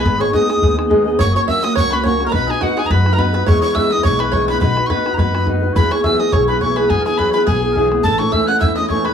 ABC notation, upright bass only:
X:1
M:4/4
L:1/8
Q:"Swing" 1/4=210
K:B
V:1 name="Upright bass" clef=bass
G,,, z3 D,,4 | F,,, z3 C,,4 | B,,, z3 F,,4 | E,, z3 B,,,4 |
B,,, z3 F,,4 | [K:E] E,, z3 B,,,4 | E,, z3 B,,,4 | A,,, z3 E,,4 |]